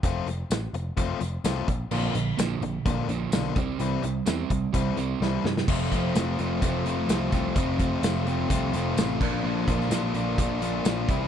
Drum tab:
CC |----------------|x---------------|----------------|x---------------|
HH |x-x-x-x-x-x-x-x-|--x-x-x-x-x-x-x-|x-x-x-x-x-x-----|--x-x-x-x-x-x-x-|
TB |----x-------x---|----x-------x---|----x-----------|----x-------x---|
SD |----o-------o---|----o-------o---|----o-------o-oo|----o-------o-o-|
BD |o-------o-----o-|--------o-----o-|------o-o-------|o-o-----o-----o-|

CC |--------------x-|----------------|
HH |x-x-x-x-x-x-x---|--x-x-x-x-x-x-x-|
TB |----x-------x---|----x-------x---|
SD |----o-------o-o-|---oo-------o---|
BD |o-o-----o-----o-|--o-----o-----o-|